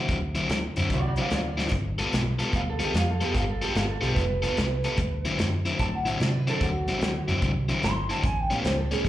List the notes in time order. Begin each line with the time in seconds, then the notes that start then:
Already playing: D3 F#3 C4 E4
0.09 D2, kick, closed hi-hat
0.35 D3 F#3 C4 E4, closed hi-hat
0.49 D2, snare, closed hi-hat
0.76 F#2 D3 F#3 C4 E4, closed hi-hat
0.90 C2 F#4 D5, kick, closed hi-hat
1.07 F#4 D5
1.16 D3 F#3 C4 E4, closed hi-hat
1.21 D5 F5
1.30 D2 D5 F5, snare, closed hi-hat
1.48 D5
1.57 D3 F#3 C4 E4, snare
1.68 G1, snare, closed hi-hat
1.72 kick
1.98 G3 B3 F4 A4, closed hi-hat
2.13 B1, snare, closed hi-hat
2.39 G3 B3 F4 A4, snare, closed hi-hat
2.53 D2 F5, kick, closed hi-hat
2.70 A4
2.79 G3 B3 F4 A4, closed hi-hat
2.84 G4
2.94 F2, snare, closed hi-hat
2.98 F5
3.11 A4
3.21 G3 B3 F4 G4 A4, closed hi-hat
3.34 G1 F5, kick, closed hi-hat
3.49 A4
3.62 G3 B3 F4 G4 A4, closed hi-hat
3.75 G1 F5, snare, closed hi-hat
3.90 A4
4.01 B1 G3 B3 F4 G4 A4, closed hi-hat
4.14 F1 B4, kick, closed hi-hat
4.42 G3 B3 F4 A4, closed hi-hat
4.57 C2, snare, closed hi-hat
4.84 G3 B3 F4 A4, closed hi-hat
4.97 D2, kick, closed hi-hat
5.25 D3 F#3 C4 E4, closed hi-hat
5.39 F#2, snare, closed hi-hat
5.65 D3 F#3 C4 E4, closed hi-hat
5.79 A2 A5, kick, closed hi-hat
5.95 F#5
6.05 D3 F#3 C4 E4 E5, closed hi-hat
6.20 C3 D5, snare, closed hi-hat
6.35 B4
6.47 D3 F#3 C4 E4 A4, closed hi-hat
6.61 D2 F#4, kick, closed hi-hat
6.88 D3 F#3 C4 E4, closed hi-hat
7.01 D2, snare, closed hi-hat
7.28 F#2 D3 F#3 C4 E4, closed hi-hat
7.42 C2, kick, closed hi-hat
7.69 D3 F#3 C4 E4, closed hi-hat
7.83 G1 C6, snare, closed hi-hat
8.10 D3 F#3 C4 E4 A5, closed hi-hat
8.24 A1 G#5, kick, closed hi-hat
8.40 G5
8.50 A2 G3 B3 C#4 F5, closed hi-hat
8.65 C#2 C5, snare, closed hi-hat
8.78 A4
8.91 A2 G3 B3 C#4 G#4, snare, closed hi-hat
9.04 E2 G4, kick, closed hi-hat